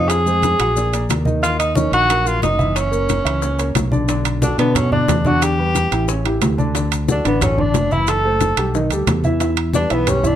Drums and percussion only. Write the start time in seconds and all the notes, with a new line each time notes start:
0.09 high bongo, high conga, high timbale, maracas
0.26 high conga, maracas
0.42 high bongo, high conga, high timbale, maracas
0.59 high bongo, high conga, high timbale, maracas
0.76 high bongo, high conga, maracas
0.93 high bongo, high conga, high timbale, maracas
1.09 high bongo, low bongo, high conga, high timbale, maracas
1.25 high bongo, high conga, maracas
1.43 high bongo, high timbale, maracas
1.59 high conga, high timbale, maracas
1.75 high bongo, high conga, maracas
1.93 high timbale, maracas
2.09 high bongo, high conga, high timbale, maracas
2.26 high conga, maracas
2.42 high bongo, low bongo, high conga, high timbale, maracas
2.59 high conga, maracas
2.76 high bongo, high timbale, maracas
2.92 high conga, maracas
3.09 high bongo, high conga, high timbale, maracas
3.25 high bongo, high conga, high timbale, maracas
3.42 high bongo, high conga, maracas
3.59 high bongo, high conga, high timbale, maracas
3.75 high bongo, low bongo, high conga, high timbale, low timbale, maracas
3.92 high bongo, high conga, maracas
4.08 high bongo, high conga, high timbale, maracas
4.25 high conga, high timbale, maracas
4.42 high bongo, high conga, maracas
4.58 high timbale, maracas
4.75 high bongo, high conga, low conga, high timbale, maracas
4.92 high conga, low conga
5.08 high bongo, low bongo, high conga, high timbale, low timbale, maracas
5.25 high conga, maracas
5.42 high bongo, high conga, high timbale, maracas
5.58 high conga
5.75 high bongo, high conga, high timbale, maracas
5.92 high bongo, high conga, high timbale, maracas
6.08 high bongo, high conga, maracas
6.25 high bongo, high conga, high timbale
6.42 high bongo, low bongo, high conga, high timbale, low timbale, maracas
6.58 high bongo, high conga, maracas
6.75 high bongo, high conga, high timbale, maracas
6.92 high conga, high timbale, maracas
7.08 high bongo, high conga, maracas
7.25 high timbale, maracas
7.41 high bongo, high conga, low conga, high timbale, maracas
7.58 high conga, low conga
7.74 high bongo, low bongo, high conga, high timbale, low timbale, maracas
7.91 high conga, maracas
8.07 high bongo, high conga, high timbale, maracas
8.24 high conga
8.41 high bongo, high conga, high timbale, maracas
8.57 high bongo, high conga, high timbale, maracas
8.74 high bongo, high conga, maracas
8.91 high bongo, high conga, high timbale, maracas
9.07 high bongo, low bongo, high conga, high timbale, low timbale, maracas
9.24 high bongo, high conga, maracas
9.40 high bongo, high conga, high timbale, maracas
9.57 high conga, high timbale
9.73 high bongo, high conga, maracas
9.90 high timbale, maracas
10.07 high bongo, high conga, low conga, high timbale, maracas
10.24 high conga, low conga, maracas